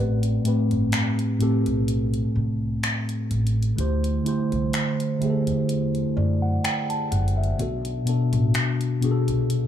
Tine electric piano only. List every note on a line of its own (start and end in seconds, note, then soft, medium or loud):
0.00 0.40 A2 medium
0.00 0.41 A3 medium
0.00 0.41 C4 medium
0.00 0.42 G4 medium
0.00 0.21 A4 medium
0.00 0.43 B4 medium
0.43 1.32 A2 medium
0.43 1.32 A3 medium
0.43 1.33 C4 medium
0.43 1.33 G4 medium
0.48 1.34 B4 medium
1.38 3.15 A2 medium
1.38 3.15 A3 medium
1.38 3.16 C4 medium
1.38 3.16 G4 medium
1.43 3.17 A4 medium
3.76 4.21 D3 medium
3.76 4.22 A3 medium
3.76 4.22 E4 medium
3.76 4.23 G4 medium
3.81 4.23 C5 medium
4.24 5.12 D3 medium
4.24 5.13 A3 medium
4.24 5.14 E4 medium
4.24 5.14 G4 medium
4.28 5.15 C5 medium
5.19 6.95 D3 medium
5.19 6.96 A3 medium
5.19 6.97 E4 medium
5.19 6.97 G4 medium
5.24 5.30 G#4 medium
5.30 7.01 A4 medium
6.17 6.41 D5 medium
6.42 6.63 F#5 medium
6.64 6.89 G5 medium
6.90 7.11 A5 medium
7.11 7.36 F#5 medium
7.37 7.83 E5 medium
7.57 8.02 B2 medium
7.57 8.03 B3 medium
7.57 8.03 D4 medium
7.57 8.04 F#4 medium
7.62 8.04 A4 medium
8.04 8.93 B2 medium
8.04 8.94 B3 medium
8.04 8.95 D4 medium
8.04 8.95 F#4 medium
8.09 8.96 A4 medium
9.00 9.67 B2 medium
9.00 9.67 B3 medium
9.00 9.67 D4 medium
9.00 9.67 F#4 medium
9.05 9.11 G#4 medium
9.11 9.67 A4 medium